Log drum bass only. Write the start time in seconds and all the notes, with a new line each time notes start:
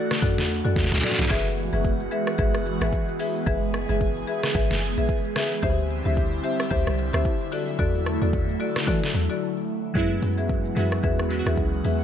0.23 F#2
0.38 E2
0.65 F#2
0.76 E2
0.92 D2
1.19 B1
1.31 F#1
1.73 F#1
2.39 G#1
2.54 F#1
2.81 G#1
3.47 F#1
3.89 F#1
4.55 G#1
4.71 F#1
4.98 A#1
5.63 D2
6.06 D2
6.71 D2
6.87 C2
7.14 D2
7.79 E2
8.22 E2
8.88 E3
9.14 E2
9.95 F#2
10.22 F#2
10.76 F#2
11.04 E2
11.46 D#2
11.57 C#2
11.85 E2